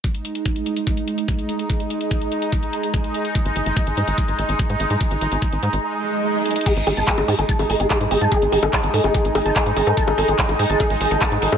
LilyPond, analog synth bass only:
\new Staff \with { instrumentName = "Analog synth bass" } { \clef bass \time 4/4 \tempo 4 = 145 r1 | r1 | r16 gis,,16 gis,,16 gis,,16 r16 gis,,16 gis,16 gis,,16 r16 gis,,16 gis,,16 gis,,16 r16 gis,16 gis,,16 gis,16 | r16 gis,,16 gis,,16 gis,,16 r16 gis,,16 gis,16 gis,,16 r2 |
r16 gis,,16 gis,,16 gis,,16 r16 gis,,16 gis,16 gis,,16 r16 gis,,16 gis,,16 gis,,16 r16 gis,16 gis,,16 gis,16 | r16 gis,,16 gis,,16 gis,,16 r16 gis,,16 gis,16 gis,,16 r16 gis,,16 gis,,16 gis,,16 r16 gis,16 gis,,16 gis,16 | r16 gis,,16 gis,,16 gis,,16 r16 gis,,16 gis,16 gis,,16 r16 gis,,16 gis,,16 gis,,16 r16 gis,16 gis,,16 gis,16 | }